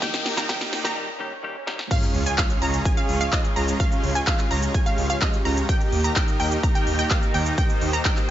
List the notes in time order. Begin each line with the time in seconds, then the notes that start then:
Already playing: D#2 D#3 G4 A#4, riser
0.01 D#3 G3 A#3 D#4 G4 D#5 G5, kick, snare, closed hi-hat, shaker
0.14 snare, closed hi-hat, shaker
0.26 snare, open hi-hat
0.37 D#3 G3 A#3 D#4 G4 D#5 A#5, snare, closed hi-hat, shaker
0.49 D#3 G3 A#3 D#4 G4 D#5 G5, kick, snare, closed hi-hat, shaker
0.61 snare, shaker
0.73 snare, open hi-hat
0.84 D#3 G3 A#3 D#4 G4 D#5 A#5, snare, closed hi-hat, shaker
0.96 D#3 G3 A#3 G4, swell
1.19 D#3 G3 A#3 G4
1.43 D#3 G3 A#3 G4
1.67 D#3 G3 A#3 G4, snare
1.79 snare
1.91 C#3 G#3 C#4 F4 G#4 C#5 F5, kick, closed hi-hat, crash, sub drop, shaker
2.03 closed hi-hat, shaker
2.15 C#2, open hi-hat
2.26 G#3 C#4 F4 C#5 G#5, closed hi-hat, shaker
2.38 G#3 C#4 F4 C#5 F5, kick, clap, closed hi-hat, shaker
2.50 closed hi-hat, shaker
2.62 C#2 G#3 C#4 F4 C#5 A#5, open hi-hat
2.74 closed hi-hat, shaker
2.85 G#3 C#4 F4 C#5 G#5, kick, closed hi-hat, shaker
2.97 G#3 C#4 F4 C#5 F5, closed hi-hat, shaker
3.09 C#2, open hi-hat
3.21 G#3 C#4 F4 C#5 F5, closed hi-hat, shaker
3.33 G#3 C#4 F4 C#5 D#5, kick, clap, closed hi-hat, shaker
3.45 shaker
3.56 C#2 G#3 C#4 F4 C#5 A#5, open hi-hat
3.68 closed hi-hat, shaker
3.80 G#3 C#4 F4 G4 C#5 F5, kick, closed hi-hat, shaker
3.92 closed hi-hat, shaker
4.04 C#2, open hi-hat
4.15 G#3 C#4 F4 C#5 G#5, closed hi-hat, shaker
4.27 G#3 C#4 F4 C#5 F5, kick, clap, closed hi-hat, shaker
4.39 clap, closed hi-hat, shaker
4.51 C#2 G#3 C#4 F4 C#5 A#5, open hi-hat
4.63 closed hi-hat, shaker
4.74 G#3 C#4 F4 C#5 G#5, kick, closed hi-hat, shaker
4.86 G#3 C#4 F4 C#5 F5, closed hi-hat, shaker
4.98 C#2, open hi-hat
5.10 G#3 C#4 F4 C#5 F5, closed hi-hat, shaker
5.22 G#3 C#4 F4 C#5 D#5, kick, clap, closed hi-hat, shaker
5.34 shaker
5.45 C#2 G#3 C#4 F4 C#5 A#5, open hi-hat
5.57 closed hi-hat, shaker
5.69 D#3 A#3 D#4 G4 A#4 D#5 G5, kick, closed hi-hat, shaker
5.81 closed hi-hat, shaker
5.93 D#2, open hi-hat
6.04 A#3 D#4 G4 D#5 A#5, closed hi-hat, shaker
6.16 A#3 D#4 G4 D#5 G5, kick, clap, closed hi-hat, shaker
6.28 closed hi-hat, shaker
6.40 D#2 A#3 D#4 G4 D#5 G5, open hi-hat
6.52 closed hi-hat, shaker
6.63 A#3 D#4 G4 D#5 A#5, kick, closed hi-hat, shaker
6.75 A#3 D#4 G4 D#5 G5, closed hi-hat, shaker
6.87 D#2, open hi-hat
6.99 A#3 D#4 G4 D#5 G5, closed hi-hat, shaker
7.11 A#3 D#4 G4 D#5 F5, kick, clap, closed hi-hat, shaker
7.22 shaker
7.34 D#2 A#3 D#4 G4 D#5 G5, open hi-hat
7.46 closed hi-hat, shaker
7.58 A#3 D#4 G4 C5 D#5 G5, kick, closed hi-hat, shaker
7.70 closed hi-hat, shaker
7.81 D#2, open hi-hat
7.93 A#3 D#4 G4 D#5 A#5, closed hi-hat, shaker
8.05 A#3 D#4 G4 D#5 G5, kick, clap, closed hi-hat, shaker
8.17 clap, closed hi-hat, shaker